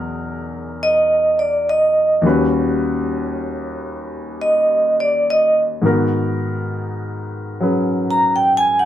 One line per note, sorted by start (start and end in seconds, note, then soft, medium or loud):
0.00 2.24 E2 soft
0.00 2.25 B2 soft
0.00 2.25 F#3 soft
0.00 2.26 D#4 soft
0.00 2.26 G#4 soft
0.00 2.27 A#4 medium
0.83 1.35 D#5 medium
1.39 1.66 D5 medium
1.69 2.15 D#5 medium
2.22 5.82 D#2 medium
2.22 5.81 D#3 soft
2.22 5.83 G3 soft
2.22 5.84 C#4 soft
2.26 5.83 F#4 soft
2.26 5.84 B4 medium
4.41 4.94 D#5 medium
5.00 5.26 D5 medium
5.30 5.58 D#5 medium
5.82 8.85 G#2 soft
5.82 8.85 D#3 soft
5.82 8.85 B3 soft
5.82 8.85 F#4 soft
5.86 8.85 A#4 soft
7.60 8.85 F#3 soft
7.60 8.85 C#4 soft
7.60 8.85 G#4 soft
7.60 8.85 B4 soft
8.11 8.30 A#5 medium
8.36 8.51 G5 medium
8.57 8.83 G#5 medium
8.79 8.85 F#5 medium